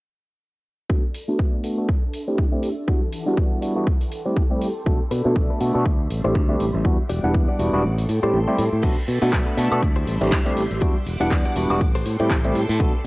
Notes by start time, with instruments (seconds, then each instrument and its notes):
0.89 tine electric piano A3 B3 D4 F#4 A4, string machine A4 D5 B5, kick
1.14 open hi-hat
1.28 tine electric piano A3 B3 D4 F#4 A4
1.39 kick
1.64 tine electric piano A3 B3 D4 F#4 A4, open hi-hat
1.77 tine electric piano A3 B3 D4 F#4 A4
1.88 string machine D4 A4 E5 C6, kick
2.14 open hi-hat
2.27 tine electric piano A3 C4 D4 E4 G4
2.38 kick
2.52 tine electric piano A3 C4 D4 E4 G4
2.63 open hi-hat
2.87 string machine E3 F#5 D6, tine electric piano G3 B3 D4 E4 F#4, kick
3.13 open hi-hat
3.26 tine electric piano G3 B3 D4 E4 F#4
3.37 kick
3.62 tine electric piano G3 B3 D4 E4 F#4, open hi-hat
3.76 tine electric piano G3 B3 D4 E4 F#4
3.87 string machine A4 G5 C6, kick
4.01 open hi-hat
4.12 open hi-hat
4.26 tine electric piano G3 A3 C4 E4 G4
4.37 kick
4.50 tine electric piano G3 A3 C4 E4 G4
4.62 open hi-hat
4.86 fingered electric bass B1, tine electric piano A3 B3 D4 F#4 A4, string machine D5 B5, kick
5.11 fingered electric bass B2, clean electric guitar D4 A4 B4, open hi-hat
5.25 fingered electric bass B2, tine electric piano A3 B3 D4 F#4 A4
5.36 fingered electric bass B1, kick
5.50 clean electric guitar D4 A4 B4
5.60 fingered electric bass B2, tine electric piano A3 B3 D4 F#4 A4, open hi-hat
5.74 fingered electric bass B2, tine electric piano A3 B3 D4 F#4 A4
5.86 fingered electric bass D2, string machine G3 E5 C6, kick
6.10 fingered electric bass A1, open hi-hat
6.24 fingered electric bass A1, tine electric piano A3 C4 D4 E4 G4, clean electric guitar E4 G4 C5
6.35 fingered electric bass D2, kick
6.49 tine electric piano A3 C4 D4 E4 G4, clean electric guitar E4 G4 C5
6.60 fingered electric bass A1, open hi-hat
6.74 fingered electric bass A1, muted clean electric guitar stroke
6.84 tine electric piano G3 B3 D4 E4 F#4, string machine F#5 D6, kick
7.09 fingered electric bass E1, clean electric guitar F#4 G4 D5, open hi-hat
7.23 fingered electric bass E1, tine electric piano G3 B3 D4 E4 F#5
7.34 fingered electric bass E2, muted clean electric guitar stroke, kick
7.48 clean electric guitar F#4 G4 D5
7.59 fingered electric bass E1, tine electric piano G3 B3 D4 E4 F#4, open hi-hat
7.73 fingered electric bass E1, tine electric piano G3 B3 D4 E4 F#4
7.84 fingered electric bass A1, string machine A4 G5 C6
7.98 open hi-hat
8.09 fingered electric bass A2, open hi-hat
8.22 fingered electric bass A2, tine electric piano G3 A3 C4 E4 G4, clean electric guitar G4 A4 C5
8.34 fingered electric bass A1
8.47 tine electric piano G3 A3 C4 E4 G4, clean electric guitar G4 A4 C5
8.58 fingered electric bass A2, open hi-hat
8.72 fingered electric bass A2, muted clean electric guitar stroke
8.83 fingered electric bass B1, tine electric piano A3 B3 D4 F#4 A4, clean electric guitar D4 A4 B4, string machine A4 D5 B5, kick, closed hi-hat, crash, shaker
8.98 shaker
9.08 fingered electric bass B2, open hi-hat
9.22 fingered electric bass B2, tine electric piano A3 B3 D4 F#4 A4, clean electric guitar D4 A4 B4, closed hi-hat, shaker
9.33 fingered electric bass B1, kick, clap, closed hi-hat, shaker
9.47 clean electric guitar D4 A4 B4, closed hi-hat, shaker
9.57 fingered electric bass B2, tine electric piano A3 B3 D4 F#4 A4, open hi-hat
9.71 fingered electric bass B2, tine electric piano A3 B3 D4 F#4 A4, closed hi-hat, high woodblock, shaker
9.82 fingered electric bass D2, string machine G3 E5 C6, kick, closed hi-hat, shaker
9.96 clean electric guitar E4 G4 C5, shaker
10.07 fingered electric bass A1, open hi-hat
10.21 fingered electric bass A1, tine electric piano A3 C4 D4 E4 G4, closed hi-hat, shaker
10.31 fingered electric bass D2, clean electric guitar E4 G4 C5, kick, clap, closed hi-hat, shaker
10.45 tine electric piano A3 C4 D4 E4 G4, closed hi-hat, shaker
10.57 fingered electric bass A1, open hi-hat
10.71 fingered electric bass A1, closed hi-hat, shaker
10.81 fingered electric bass E2, tine electric piano G3 B3 D4 E4 F#4, clean electric guitar F#4 G4 D5, string machine F#5 D6, kick, closed hi-hat, shaker
10.96 shaker
11.06 fingered electric bass E1, open hi-hat
11.20 fingered electric bass E1, tine electric piano G3 B3 D4 E4 F#5, clean electric guitar F#4 G4 D5, closed hi-hat, shaker
11.31 fingered electric bass E2, kick, clap, closed hi-hat, shaker
11.45 clean electric guitar F#4 G4 D5, closed hi-hat, shaker
11.55 fingered electric bass E1, tine electric piano G3 B3 D4 E4 F#4, open hi-hat
11.69 fingered electric bass E1, tine electric piano G3 B3 D4 E4 F#4, closed hi-hat, high woodblock, shaker
11.81 fingered electric bass A1, string machine A4 G5 C6, kick, closed hi-hat, shaker
11.95 clean electric guitar G4 A4 C5, open hi-hat, shaker
12.05 fingered electric bass A2, open hi-hat
12.19 fingered electric bass A2, tine electric piano G3 A3 C4 E4 G4, closed hi-hat, shaker
12.30 fingered electric bass A1, clean electric guitar G4 A4 C5, kick, clap, closed hi-hat, shaker
12.44 tine electric piano G3 A3 C4 E4 G4, closed hi-hat, shaker
12.55 fingered electric bass A2, open hi-hat
12.69 fingered electric bass A2, closed hi-hat, shaker
12.79 fingered electric bass B1, tine electric piano A3 B3 D4 F#4 A4, clean electric guitar D4 A4 B4, string machine D5 B5, kick, closed hi-hat, shaker
12.94 shaker